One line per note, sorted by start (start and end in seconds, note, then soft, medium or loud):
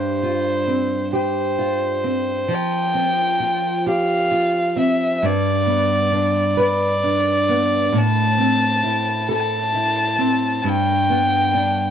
0.00 2.50 G2 medium
0.00 0.23 D4 soft
0.00 0.26 G4 medium
0.00 1.12 C5 medium
0.23 1.58 F4 soft
0.67 2.03 C4 soft
1.13 3.43 G4 medium
1.13 2.56 C5 medium
1.59 3.39 F4 soft
2.04 2.94 C4 soft
2.48 5.21 F3 medium
2.54 3.88 G5 loud
2.94 4.75 C4 soft
3.40 4.30 F4 soft
3.86 6.57 G4 medium
3.86 4.74 F5 medium
4.31 5.31 F4 soft
4.76 5.31 C4 medium
4.76 5.27 E5 medium
5.22 7.92 G2 medium
5.22 6.60 D5 loud
5.67 7.48 B3 medium
6.12 7.02 D4 medium
6.57 8.03 B4 medium
6.62 8.00 D5 loud
7.04 8.03 D4 medium
7.49 8.03 B3 medium
7.92 10.64 A2 medium
7.98 9.32 A5 loud
8.38 10.17 C4 medium
8.84 9.73 E4 medium
9.29 10.74 A4 medium
9.35 10.62 A5 loud
9.74 10.74 E4 medium
10.18 10.74 C4 medium
10.62 11.90 G2 medium
10.62 10.70 A5 medium
10.69 11.90 G5 loud
11.10 11.90 B3 medium
11.54 11.90 D4 medium